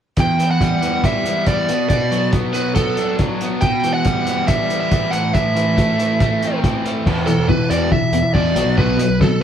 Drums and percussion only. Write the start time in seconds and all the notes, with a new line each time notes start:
0.17 kick, closed hi-hat
0.40 closed hi-hat
0.61 kick, closed hi-hat
0.83 closed hi-hat
1.04 kick, closed hi-hat
1.26 closed hi-hat
1.47 kick, closed hi-hat
1.69 closed hi-hat
1.90 kick, closed hi-hat
2.12 closed hi-hat
2.33 kick, closed hi-hat
2.54 closed hi-hat
2.76 kick, closed hi-hat
2.97 closed hi-hat
3.19 kick, closed hi-hat
3.41 closed hi-hat
3.61 kick, closed hi-hat
3.84 closed hi-hat
4.05 kick, closed hi-hat
4.27 closed hi-hat
4.48 kick, closed hi-hat
4.70 closed hi-hat
4.92 kick, closed hi-hat
5.13 closed hi-hat
5.35 kick, closed hi-hat
5.57 closed hi-hat
5.78 kick, closed hi-hat
6.00 closed hi-hat
6.20 kick, closed hi-hat
6.42 closed hi-hat
6.64 kick, closed hi-hat
6.86 closed hi-hat
7.07 kick, crash
7.27 closed hi-hat
7.49 kick
7.71 closed hi-hat
7.92 kick
8.13 closed hi-hat
8.35 kick
8.56 closed hi-hat
8.78 kick
8.99 closed hi-hat
9.21 kick, snare